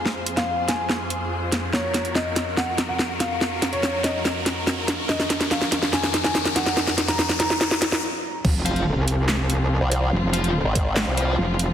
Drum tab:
CC |----------------|----------------|----------------|----------------|
HH |--xx--x---x---x-|--xx--x---x---x-|--xx--x---x---x-|--xx--x---x---x-|
CP |----------------|----------------|----------------|----------------|
SD |o--o--o-o-----o-|o-o-o-o-o-o-o-o-|o-o-o-o-o-o-o-o-|oooooooooooooooo|
BD |----------------|----------------|----------------|----------------|

CC |----------------|x---------------|----------------|
HH |--xx--x---x-----|--xx--x---x---x-|--xx--x---x---x-|
CP |----------------|--------x-------|--------x-------|
SD |oooooooooooo----|--------o-------|--------o-------|
BD |----------------|o---------------|------o---------|